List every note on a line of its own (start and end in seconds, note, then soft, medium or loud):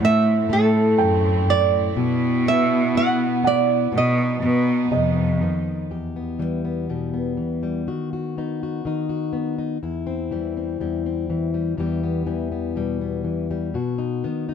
0.00 0.42 A2 medium
0.00 1.46 A2 medium
0.00 1.95 A3 medium
0.00 1.94 C4 medium
0.00 3.88 E4 medium
0.00 0.46 F#5 medium
0.00 0.16 A5 soft
0.05 0.53 E5 medium
0.49 0.91 A2 medium
0.49 1.90 A3 medium
0.49 1.52 A4 medium
0.98 1.83 F#2 medium
0.98 2.41 G5 medium
1.47 1.96 A2 medium
1.47 2.43 D5 medium
1.95 3.87 B2 medium
1.95 3.66 B2 medium
1.95 3.90 B3 medium
2.46 3.87 B3 medium
2.46 2.97 E5 medium
2.95 3.43 E4 medium
2.95 3.42 F#5 medium
3.44 3.93 E4 medium
3.44 3.96 D5 medium
3.44 4.39 F#5 medium
3.92 4.91 B2 medium
3.92 4.36 B2 medium
3.92 5.88 B3 medium
3.92 5.88 D#4 medium
3.98 4.90 D#5 medium
4.43 4.85 B2 medium
4.43 5.85 B3 medium
4.91 5.77 F2 medium
4.91 5.41 C3 medium
4.91 6.36 D#5 medium
5.42 5.91 D#3 medium
5.91 7.87 E2 soft
5.91 7.82 G4 soft
6.16 6.63 B3 soft
6.39 7.36 E3 soft
6.39 6.89 G3 soft
6.65 7.12 B3 soft
6.89 7.38 B2 soft
6.89 7.62 G3 soft
7.14 8.36 B3 soft
7.37 7.81 E3 soft
7.63 7.87 G3 soft
7.88 8.84 D#3 soft
7.88 8.12 F#4 soft
8.13 8.61 F#4 soft
8.38 9.32 B3 soft
8.38 8.86 D#4 soft
8.63 9.08 F#4 soft
8.85 9.78 D#3 soft
8.85 9.57 D#4 soft
9.09 9.77 F#4 soft
9.33 9.77 B3 soft
9.58 9.77 D#4 soft
9.83 10.79 E2 soft
9.83 11.79 E4 soft
10.07 10.56 C4 soft
10.31 11.29 E3 soft
10.31 10.80 G3 soft
10.57 11.05 C4 soft
10.80 11.76 E2 soft
10.80 11.53 G3 soft
11.06 11.74 C4 soft
11.30 11.73 E3 soft
11.54 11.78 G3 soft
11.77 13.75 E2 soft
11.77 12.25 E3 soft
11.77 12.25 G3 soft
11.77 12.02 B3 soft
11.77 13.70 G4 soft
12.03 12.51 B3 soft
12.26 13.23 E3 soft
12.26 12.76 G3 soft
12.52 13.00 B3 soft
12.76 13.26 B2 soft
12.76 13.50 G3 soft
13.01 13.98 B3 soft
13.24 13.69 E3 soft
13.51 13.76 G3 soft
13.74 14.24 B2 medium
13.74 14.54 F#4 soft
13.98 14.48 D#4 soft
14.24 14.54 D#3 soft
14.24 14.54 B3 soft
14.49 14.54 D#4 soft